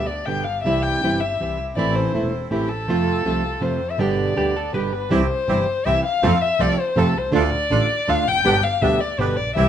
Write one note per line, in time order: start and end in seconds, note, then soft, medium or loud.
0.00 0.27 D2 soft
0.00 0.26 B3 soft
0.00 0.26 D4 soft
0.00 0.27 G4 soft
0.06 0.27 D5 medium
0.26 0.63 G1 soft
0.26 0.44 B2 medium
0.26 0.44 D3 medium
0.26 0.45 G3 medium
0.26 0.45 B3 medium
0.26 0.63 B3 soft
0.26 0.64 D4 soft
0.26 0.45 G4 medium
0.26 0.64 G4 soft
0.26 0.45 G5 medium
0.44 0.63 F5 medium
0.63 1.01 C2 medium
0.63 1.01 C3 medium
0.63 1.02 E3 medium
0.63 1.02 G3 medium
0.63 1.01 C4 medium
0.63 1.02 C4 medium
0.63 1.01 E4 medium
0.63 1.03 E4 medium
0.63 1.01 G4 medium
0.63 0.84 E5 medium
0.82 1.22 G5 medium
1.03 1.38 G1 soft
1.03 1.20 C3 medium
1.03 1.20 E3 medium
1.03 1.20 G3 medium
1.03 1.38 C4 soft
1.03 1.20 C4 medium
1.03 1.38 E4 soft
1.03 1.20 E4 medium
1.03 1.38 G4 soft
1.20 1.58 E5 medium
1.40 1.75 C2 soft
1.40 1.57 C3 medium
1.40 1.57 E3 medium
1.40 1.57 G3 medium
1.40 1.75 C4 soft
1.40 1.57 C4 medium
1.40 1.75 E4 soft
1.40 1.58 E4 medium
1.40 1.76 G4 soft
1.76 2.12 A1 medium
1.76 2.13 E3 medium
1.76 2.13 A3 medium
1.76 2.12 C4 medium
1.76 2.14 C4 medium
1.76 2.12 E4 medium
1.76 2.14 E4 medium
1.76 2.12 A4 medium
1.76 1.97 D5 medium
1.95 2.32 C5 medium
2.14 2.50 E1 soft
2.14 2.31 E3 soft
2.14 2.31 A3 medium
2.14 2.50 C4 soft
2.14 2.31 C4 medium
2.14 2.50 E4 soft
2.14 2.31 E4 medium
2.14 2.50 A4 soft
2.51 2.86 A1 soft
2.51 2.68 E3 medium
2.51 2.68 A3 medium
2.51 2.68 C4 medium
2.51 2.87 C4 soft
2.51 2.87 E4 soft
2.51 2.68 E4 medium
2.51 2.70 G4 medium
2.51 2.87 A4 soft
2.69 3.64 A4 medium
2.88 3.24 F2 medium
2.88 3.23 C3 medium
2.88 3.24 F3 medium
2.88 3.24 A3 medium
2.88 3.24 C4 medium
2.88 3.24 F4 medium
2.88 3.25 F4 medium
2.88 3.24 A4 medium
3.25 3.61 C2 soft
3.25 3.42 C3 medium
3.25 3.42 F3 medium
3.25 3.42 A3 medium
3.25 3.42 C4 medium
3.25 3.61 C4 soft
3.25 3.43 F4 medium
3.25 3.61 F4 soft
3.25 3.61 A4 soft
3.61 3.98 F2 soft
3.61 3.79 C3 medium
3.61 3.79 F3 soft
3.61 3.79 A3 medium
3.61 3.79 C4 medium
3.61 3.98 C4 soft
3.61 3.79 F4 medium
3.61 3.98 F4 soft
3.61 3.98 A4 soft
3.61 3.92 C5 medium
3.91 4.01 E5 medium
3.98 4.35 G1 medium
3.98 4.35 B2 medium
3.98 4.35 D3 medium
3.98 4.35 G3 medium
3.98 4.35 B3 medium
3.98 4.35 D4 medium
3.98 4.35 G4 medium
3.98 4.36 G4 medium
3.98 4.74 D5 medium
4.36 4.73 D2 soft
4.36 4.53 B2 medium
4.36 4.54 D3 medium
4.36 4.54 G3 medium
4.36 4.54 B3 medium
4.36 4.72 B3 soft
4.36 4.72 D4 soft
4.36 4.54 G4 medium
4.36 4.57 G4 medium
4.36 4.73 G4 soft
4.56 4.74 A4 medium
4.74 5.10 G1 soft
4.74 4.91 B2 soft
4.74 4.91 D3 medium
4.74 4.91 G3 medium
4.74 5.10 B3 soft
4.74 4.91 B3 medium
4.74 5.10 D4 soft
4.74 5.10 G4 medium
4.74 4.92 G4 medium
4.74 4.94 G4 medium
4.74 5.09 B4 medium
4.93 5.14 B4 medium
5.11 5.27 C2 medium
5.11 5.20 C3 medium
5.11 5.20 E3 medium
5.11 5.20 G3 medium
5.11 5.27 C4 medium
5.11 5.20 C4 medium
5.11 5.27 E4 medium
5.11 5.21 E4 medium
5.11 5.27 G4 medium
5.11 5.88 C5 medium
5.48 5.64 G1 medium
5.48 5.65 C3 medium
5.48 5.66 E3 medium
5.48 5.66 G3 medium
5.48 5.64 C4 medium
5.48 5.66 C4 medium
5.48 5.64 E4 soft
5.48 5.66 E4 medium
5.48 5.64 G4 medium
5.85 6.02 C2 medium
5.85 6.03 C3 medium
5.85 6.03 E3 medium
5.85 6.03 G3 medium
5.85 6.01 C4 medium
5.85 6.03 C4 medium
5.85 6.02 E4 soft
5.85 6.04 E4 medium
5.85 6.02 G4 medium
5.85 6.04 E5 medium
6.04 6.43 F5 medium
6.22 6.39 F2 loud
6.22 6.32 C3 medium
6.22 6.32 F3 medium
6.22 6.32 A3 medium
6.22 6.38 C4 medium
6.22 6.32 C4 medium
6.22 6.39 F4 medium
6.22 6.33 F4 medium
6.22 6.39 A4 medium
6.42 6.62 E5 loud
6.59 6.76 C2 medium
6.59 6.77 C3 medium
6.59 6.77 F3 medium
6.59 6.77 A3 medium
6.59 6.75 C4 medium
6.59 6.77 C4 medium
6.59 6.75 F4 soft
6.59 6.77 F4 medium
6.59 6.76 A4 medium
6.59 6.81 D5 loud
6.79 7.00 C5 medium
6.96 7.13 F2 medium
6.96 7.13 C3 medium
6.96 7.14 F3 medium
6.96 7.14 A3 medium
6.96 7.13 C4 medium
6.96 7.14 C4 medium
6.96 7.13 F4 medium
6.96 7.14 F4 medium
6.96 7.13 A4 medium
6.96 7.19 A4 medium
7.16 7.33 C2 medium
7.16 7.35 C5 medium
7.32 7.50 D2 loud
7.32 7.42 D3 medium
7.32 7.42 A3 medium
7.32 7.42 D4 medium
7.32 7.50 D4 medium
7.32 7.43 F4 medium
7.32 7.50 F4 medium
7.32 7.50 A4 medium
7.32 8.11 D5 loud
7.70 7.87 A1 medium
7.70 7.88 D3 medium
7.70 7.88 A3 medium
7.70 7.87 D4 medium
7.70 7.88 D4 medium
7.70 7.87 F4 soft
7.70 7.88 F4 medium
7.70 7.87 A4 medium
8.08 8.24 D2 medium
8.08 8.25 D3 medium
8.08 8.25 A3 medium
8.08 8.24 D4 medium
8.08 8.25 D4 medium
8.08 8.24 F4 medium
8.08 8.26 F4 medium
8.08 8.24 A4 medium
8.08 8.29 F5 loud
8.27 8.44 F1 medium
8.27 8.65 G5 loud
8.44 8.61 G1 loud
8.44 8.54 B2 medium
8.44 8.54 D3 medium
8.44 8.54 G3 medium
8.44 8.54 B3 medium
8.44 8.61 B3 medium
8.44 8.61 D4 medium
8.44 8.54 G4 loud
8.44 8.61 G4 medium
8.63 8.83 F5 loud
8.82 8.98 D2 medium
8.82 8.99 B2 medium
8.82 8.99 D3 medium
8.82 8.99 G3 medium
8.82 8.98 B3 soft
8.82 8.99 B3 medium
8.82 8.98 D4 soft
8.82 8.99 G4 medium
8.82 8.98 G4 medium
8.82 9.02 E5 loud
9.00 9.21 D5 medium
9.18 9.35 G1 medium
9.18 9.36 B2 medium
9.18 9.36 D3 medium
9.18 9.36 G3 medium
9.18 9.35 B3 soft
9.18 9.36 B3 medium
9.18 9.35 D4 soft
9.18 9.35 G4 medium
9.18 9.37 G4 medium
9.18 9.38 B4 medium
9.37 9.56 A#1 medium
9.37 9.55 D5 medium
9.56 9.69 C2 loud
9.56 9.65 C3 medium
9.56 9.65 E3 medium
9.56 9.65 G3 medium
9.56 9.66 C4 medium
9.56 9.69 C4 medium
9.56 9.69 E4 medium
9.56 9.66 E4 medium
9.56 9.69 G4 medium
9.56 9.69 E5 loud